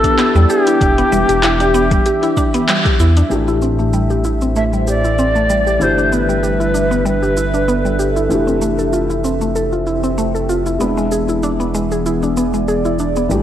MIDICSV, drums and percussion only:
0, 0, Header, 1, 2, 480
1, 0, Start_track
1, 0, Key_signature, 0, "minor"
1, 0, Tempo, 625000
1, 621, Time_signature, 4, 2, 24, 8
1, 10313, End_track
2, 0, Start_track
2, 0, Title_t, "Drums"
2, 28, Note_on_c, 9, 36, 53
2, 30, Note_on_c, 9, 42, 45
2, 30, Note_on_c, 9, 69, 28
2, 105, Note_off_c, 9, 36, 0
2, 107, Note_off_c, 9, 42, 0
2, 107, Note_off_c, 9, 69, 0
2, 142, Note_on_c, 9, 39, 96
2, 142, Note_on_c, 9, 42, 57
2, 142, Note_on_c, 9, 69, 42
2, 219, Note_off_c, 9, 39, 0
2, 219, Note_off_c, 9, 42, 0
2, 219, Note_off_c, 9, 69, 0
2, 272, Note_on_c, 9, 69, 21
2, 349, Note_off_c, 9, 69, 0
2, 382, Note_on_c, 9, 69, 65
2, 459, Note_off_c, 9, 69, 0
2, 512, Note_on_c, 9, 42, 44
2, 512, Note_on_c, 9, 69, 33
2, 589, Note_off_c, 9, 42, 0
2, 589, Note_off_c, 9, 69, 0
2, 620, Note_on_c, 9, 36, 111
2, 624, Note_on_c, 9, 42, 60
2, 624, Note_on_c, 9, 69, 43
2, 697, Note_off_c, 9, 36, 0
2, 700, Note_off_c, 9, 42, 0
2, 700, Note_off_c, 9, 69, 0
2, 753, Note_on_c, 9, 42, 30
2, 753, Note_on_c, 9, 69, 20
2, 830, Note_off_c, 9, 42, 0
2, 830, Note_off_c, 9, 69, 0
2, 863, Note_on_c, 9, 69, 68
2, 940, Note_off_c, 9, 69, 0
2, 992, Note_on_c, 9, 42, 45
2, 992, Note_on_c, 9, 69, 33
2, 1069, Note_off_c, 9, 42, 0
2, 1069, Note_off_c, 9, 69, 0
2, 1102, Note_on_c, 9, 39, 104
2, 1102, Note_on_c, 9, 42, 59
2, 1102, Note_on_c, 9, 69, 43
2, 1178, Note_off_c, 9, 39, 0
2, 1178, Note_off_c, 9, 42, 0
2, 1178, Note_off_c, 9, 69, 0
2, 1232, Note_on_c, 9, 42, 29
2, 1232, Note_on_c, 9, 69, 20
2, 1309, Note_off_c, 9, 42, 0
2, 1309, Note_off_c, 9, 69, 0
2, 1343, Note_on_c, 9, 69, 75
2, 1419, Note_off_c, 9, 69, 0
2, 1471, Note_on_c, 9, 36, 93
2, 1471, Note_on_c, 9, 42, 49
2, 1471, Note_on_c, 9, 69, 32
2, 1548, Note_off_c, 9, 36, 0
2, 1548, Note_off_c, 9, 42, 0
2, 1548, Note_off_c, 9, 69, 0
2, 1582, Note_on_c, 9, 42, 60
2, 1582, Note_on_c, 9, 69, 45
2, 1659, Note_off_c, 9, 42, 0
2, 1659, Note_off_c, 9, 69, 0
2, 1713, Note_on_c, 9, 42, 34
2, 1713, Note_on_c, 9, 69, 21
2, 1790, Note_off_c, 9, 42, 0
2, 1790, Note_off_c, 9, 69, 0
2, 1821, Note_on_c, 9, 36, 56
2, 1823, Note_on_c, 9, 69, 71
2, 1898, Note_off_c, 9, 36, 0
2, 1900, Note_off_c, 9, 69, 0
2, 1953, Note_on_c, 9, 42, 44
2, 1953, Note_on_c, 9, 69, 30
2, 2030, Note_off_c, 9, 42, 0
2, 2030, Note_off_c, 9, 69, 0
2, 2064, Note_on_c, 9, 39, 109
2, 2064, Note_on_c, 9, 42, 58
2, 2064, Note_on_c, 9, 69, 42
2, 2141, Note_off_c, 9, 39, 0
2, 2141, Note_off_c, 9, 42, 0
2, 2141, Note_off_c, 9, 69, 0
2, 2191, Note_on_c, 9, 36, 105
2, 2194, Note_on_c, 9, 42, 31
2, 2194, Note_on_c, 9, 69, 21
2, 2267, Note_off_c, 9, 36, 0
2, 2270, Note_off_c, 9, 42, 0
2, 2271, Note_off_c, 9, 69, 0
2, 2301, Note_on_c, 9, 69, 69
2, 2378, Note_off_c, 9, 69, 0
2, 2432, Note_on_c, 9, 42, 45
2, 2432, Note_on_c, 9, 69, 31
2, 2509, Note_off_c, 9, 42, 0
2, 2509, Note_off_c, 9, 69, 0
2, 2542, Note_on_c, 9, 69, 37
2, 2618, Note_off_c, 9, 69, 0
2, 2673, Note_on_c, 9, 69, 17
2, 2750, Note_off_c, 9, 69, 0
2, 2782, Note_on_c, 9, 69, 64
2, 2858, Note_off_c, 9, 69, 0
2, 2912, Note_on_c, 9, 69, 31
2, 2989, Note_off_c, 9, 69, 0
2, 3022, Note_on_c, 9, 69, 38
2, 3098, Note_off_c, 9, 69, 0
2, 3151, Note_on_c, 9, 69, 18
2, 3228, Note_off_c, 9, 69, 0
2, 3260, Note_on_c, 9, 69, 67
2, 3337, Note_off_c, 9, 69, 0
2, 3391, Note_on_c, 9, 69, 29
2, 3468, Note_off_c, 9, 69, 0
2, 3501, Note_on_c, 9, 69, 39
2, 3578, Note_off_c, 9, 69, 0
2, 3633, Note_on_c, 9, 69, 19
2, 3710, Note_off_c, 9, 69, 0
2, 3742, Note_on_c, 9, 69, 68
2, 3819, Note_off_c, 9, 69, 0
2, 3872, Note_on_c, 9, 69, 27
2, 3949, Note_off_c, 9, 69, 0
2, 3982, Note_on_c, 9, 69, 42
2, 4059, Note_off_c, 9, 69, 0
2, 4112, Note_on_c, 9, 69, 20
2, 4189, Note_off_c, 9, 69, 0
2, 4222, Note_on_c, 9, 69, 66
2, 4299, Note_off_c, 9, 69, 0
2, 4353, Note_on_c, 9, 69, 27
2, 4430, Note_off_c, 9, 69, 0
2, 4462, Note_on_c, 9, 69, 40
2, 4539, Note_off_c, 9, 69, 0
2, 4594, Note_on_c, 9, 69, 19
2, 4671, Note_off_c, 9, 69, 0
2, 4704, Note_on_c, 9, 69, 70
2, 4781, Note_off_c, 9, 69, 0
2, 4833, Note_on_c, 9, 69, 30
2, 4910, Note_off_c, 9, 69, 0
2, 4942, Note_on_c, 9, 69, 41
2, 5019, Note_off_c, 9, 69, 0
2, 5073, Note_on_c, 9, 69, 19
2, 5150, Note_off_c, 9, 69, 0
2, 5182, Note_on_c, 9, 69, 70
2, 5259, Note_off_c, 9, 69, 0
2, 5313, Note_on_c, 9, 69, 30
2, 5390, Note_off_c, 9, 69, 0
2, 5422, Note_on_c, 9, 69, 42
2, 5499, Note_off_c, 9, 69, 0
2, 5553, Note_on_c, 9, 69, 20
2, 5630, Note_off_c, 9, 69, 0
2, 5661, Note_on_c, 9, 69, 72
2, 5738, Note_off_c, 9, 69, 0
2, 5791, Note_on_c, 9, 69, 28
2, 5867, Note_off_c, 9, 69, 0
2, 5902, Note_on_c, 9, 69, 41
2, 5979, Note_off_c, 9, 69, 0
2, 6032, Note_on_c, 9, 69, 20
2, 6108, Note_off_c, 9, 69, 0
2, 6140, Note_on_c, 9, 69, 66
2, 6217, Note_off_c, 9, 69, 0
2, 6271, Note_on_c, 9, 69, 31
2, 6348, Note_off_c, 9, 69, 0
2, 6380, Note_on_c, 9, 69, 40
2, 6457, Note_off_c, 9, 69, 0
2, 6510, Note_on_c, 9, 69, 19
2, 6587, Note_off_c, 9, 69, 0
2, 6617, Note_on_c, 9, 69, 72
2, 6694, Note_off_c, 9, 69, 0
2, 6748, Note_on_c, 9, 69, 30
2, 6825, Note_off_c, 9, 69, 0
2, 6858, Note_on_c, 9, 69, 41
2, 6935, Note_off_c, 9, 69, 0
2, 6989, Note_on_c, 9, 69, 20
2, 7066, Note_off_c, 9, 69, 0
2, 7100, Note_on_c, 9, 69, 75
2, 7176, Note_off_c, 9, 69, 0
2, 7230, Note_on_c, 9, 69, 31
2, 7307, Note_off_c, 9, 69, 0
2, 7340, Note_on_c, 9, 69, 41
2, 7417, Note_off_c, 9, 69, 0
2, 7471, Note_on_c, 9, 69, 20
2, 7548, Note_off_c, 9, 69, 0
2, 7579, Note_on_c, 9, 69, 68
2, 7656, Note_off_c, 9, 69, 0
2, 7709, Note_on_c, 9, 69, 30
2, 7786, Note_off_c, 9, 69, 0
2, 7819, Note_on_c, 9, 69, 41
2, 7896, Note_off_c, 9, 69, 0
2, 7951, Note_on_c, 9, 69, 20
2, 8028, Note_off_c, 9, 69, 0
2, 8060, Note_on_c, 9, 69, 71
2, 8137, Note_off_c, 9, 69, 0
2, 8189, Note_on_c, 9, 69, 31
2, 8266, Note_off_c, 9, 69, 0
2, 8299, Note_on_c, 9, 69, 41
2, 8376, Note_off_c, 9, 69, 0
2, 8430, Note_on_c, 9, 69, 19
2, 8507, Note_off_c, 9, 69, 0
2, 8539, Note_on_c, 9, 69, 69
2, 8616, Note_off_c, 9, 69, 0
2, 8670, Note_on_c, 9, 69, 31
2, 8747, Note_off_c, 9, 69, 0
2, 8779, Note_on_c, 9, 69, 40
2, 8856, Note_off_c, 9, 69, 0
2, 8911, Note_on_c, 9, 69, 19
2, 8988, Note_off_c, 9, 69, 0
2, 9021, Note_on_c, 9, 69, 70
2, 9098, Note_off_c, 9, 69, 0
2, 9149, Note_on_c, 9, 69, 31
2, 9226, Note_off_c, 9, 69, 0
2, 9261, Note_on_c, 9, 69, 43
2, 9338, Note_off_c, 9, 69, 0
2, 9389, Note_on_c, 9, 69, 22
2, 9466, Note_off_c, 9, 69, 0
2, 9498, Note_on_c, 9, 69, 70
2, 9575, Note_off_c, 9, 69, 0
2, 9628, Note_on_c, 9, 69, 27
2, 9705, Note_off_c, 9, 69, 0
2, 9738, Note_on_c, 9, 69, 43
2, 9814, Note_off_c, 9, 69, 0
2, 9869, Note_on_c, 9, 69, 20
2, 9945, Note_off_c, 9, 69, 0
2, 9977, Note_on_c, 9, 69, 67
2, 10054, Note_off_c, 9, 69, 0
2, 10107, Note_on_c, 9, 69, 31
2, 10184, Note_off_c, 9, 69, 0
2, 10218, Note_on_c, 9, 69, 42
2, 10295, Note_off_c, 9, 69, 0
2, 10313, End_track
0, 0, End_of_file